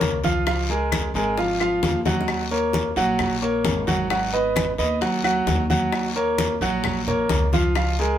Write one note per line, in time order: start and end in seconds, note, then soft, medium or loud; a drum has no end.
0.00 1.08 C#2 loud
0.00 0.15 A#3 medium
0.00 0.16 A#4 medium
0.00 0.16 C#5 medium
0.00 high bongo medium
0.00 low bongo medium
0.00 high conga medium
0.00 short guiro medium
0.24 0.43 F3 medium
0.24 0.43 F4 medium
0.24 0.43 F5 medium
0.24 high bongo soft
0.24 high conga medium
0.24 short guiro medium
0.46 0.65 F3 medium
0.46 0.65 F4 medium
0.46 0.66 F5 medium
0.46 high bongo medium
0.46 high conga soft
0.46 long guiro medium
0.46 claves medium
0.69 1.07 G#3 medium
0.69 1.07 G#4 medium
0.69 1.07 A#4 medium
0.69 high bongo soft
0.69 high conga soft
0.92 high bongo medium
0.92 high conga medium
0.92 short guiro medium
0.92 claves medium
1.14 1.78 G#1 loud
1.14 1.33 G#3 medium
1.14 1.34 G#4 medium
1.14 1.34 A#4 medium
1.14 short guiro medium
1.38 1.56 F3 medium
1.38 1.56 F4 medium
1.38 1.57 F5 medium
1.38 high bongo medium
1.38 high conga soft
1.38 long guiro medium
1.60 1.98 F3 medium
1.60 1.98 F4 medium
1.60 1.98 F5 medium
1.60 high bongo soft
1.60 high conga soft
1.60 claves medium
1.83 2.90 D#2 medium
1.83 high bongo medium
1.83 low bongo medium
1.83 high conga medium
1.83 short guiro medium
2.05 2.43 F#3 medium
2.05 2.43 F#4 medium
2.05 2.43 F#5 medium
2.05 high bongo medium
2.05 high conga medium
2.05 short guiro medium
2.21 low bongo medium
2.28 high bongo medium
2.28 high conga soft
2.28 long guiro medium
2.28 claves medium
2.51 2.88 A#3 medium
2.51 2.88 A#4 medium
2.51 2.89 C#5 medium
2.51 high bongo soft
2.51 high conga soft
2.73 high bongo medium
2.73 high conga medium
2.73 short guiro medium
2.96 3.60 A#1 loud
2.96 3.34 F#3 medium
2.96 3.34 F#4 medium
2.96 3.34 F#5 medium
2.96 high conga soft
2.96 short guiro medium
3.19 high bongo medium
3.19 high conga soft
3.19 low conga medium
3.19 long guiro medium
3.19 claves medium
3.42 3.79 A#3 medium
3.42 3.79 A#4 medium
3.42 3.79 C#5 medium
3.42 high bongo soft
3.42 high conga soft
3.64 4.72 G#1 loud
3.64 high bongo medium
3.64 low bongo medium
3.64 high conga medium
3.64 short guiro medium
3.87 4.06 F#3 medium
3.87 4.06 F#4 medium
3.87 4.06 F#5 medium
3.87 high bongo soft
3.87 high conga medium
3.87 short guiro medium
4.10 4.29 F#3 medium
4.10 4.29 F#4 medium
4.10 4.29 F#5 medium
4.10 high bongo medium
4.10 high conga soft
4.10 long guiro medium
4.10 claves medium
4.33 4.70 B3 medium
4.33 4.71 B4 medium
4.33 4.71 D#5 medium
4.33 high bongo soft
4.33 high conga soft
4.56 high bongo medium
4.56 high conga loud
4.56 short guiro medium
4.56 claves medium
4.78 5.43 D#2 loud
4.78 4.97 B3 medium
4.78 4.97 B4 medium
4.78 4.97 D#5 medium
4.78 short guiro medium
5.01 5.20 F#3 medium
5.01 5.20 F#4 medium
5.01 5.20 F#5 medium
5.01 high bongo medium
5.01 high conga soft
5.01 long guiro medium
5.24 5.62 F#3 medium
5.24 5.62 F#4 medium
5.24 5.62 F#5 medium
5.24 high bongo soft
5.24 high conga soft
5.24 claves medium
5.47 6.55 D#2 medium
5.47 high bongo medium
5.47 low bongo medium
5.47 high conga medium
5.47 short guiro medium
5.70 6.07 F#3 medium
5.70 6.07 F#4 medium
5.70 6.08 F#5 medium
5.70 high bongo soft
5.70 high conga medium
5.70 short guiro medium
5.92 high bongo medium
5.92 high conga soft
5.92 long guiro medium
5.92 claves medium
6.15 6.53 A#3 medium
6.15 6.53 A#4 medium
6.15 6.53 C#5 medium
6.15 high bongo soft
6.15 high conga soft
6.38 high bongo medium
6.38 high conga loud
6.38 short guiro medium
6.61 7.26 A#1 loud
6.61 6.99 F#3 loud
6.61 6.99 F#4 loud
6.61 6.99 F#5 loud
6.61 high conga soft
6.61 short guiro medium
6.84 high bongo medium
6.84 high conga soft
6.84 low conga medium
6.84 long guiro medium
6.84 claves medium
7.07 7.45 A#3 medium
7.07 7.45 A#4 medium
7.07 7.45 C#5 medium
7.07 high bongo soft
7.07 high conga soft
7.07 low conga medium
7.29 8.18 C#2 loud
7.29 high bongo medium
7.29 low bongo medium
7.29 high conga medium
7.29 short guiro medium
7.52 7.72 F3 medium
7.52 7.72 F4 medium
7.52 7.72 F5 medium
7.52 high bongo soft
7.52 high conga medium
7.52 short guiro medium
7.75 7.95 F3 medium
7.75 7.95 F4 medium
7.75 7.95 F5 medium
7.75 high bongo medium
7.75 high conga soft
7.75 long guiro medium
7.75 claves medium
7.99 8.18 G#3 medium
7.99 8.18 G#4 medium
7.99 8.18 A#4 medium
7.99 high bongo soft
7.99 high conga soft